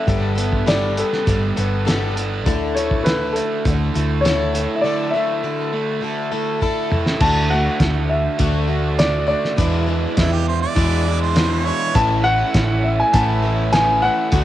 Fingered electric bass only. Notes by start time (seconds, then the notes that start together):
0.07 G1
1.27 G1
1.58 G1
2.47 D2
3.66 D2
3.96 D2
7.21 D2
7.80 D2
8.40 D2
9.58 E2
10.18 E2
10.77 E2
11.95 A1
12.55 A1
13.14 A1
14.32 D2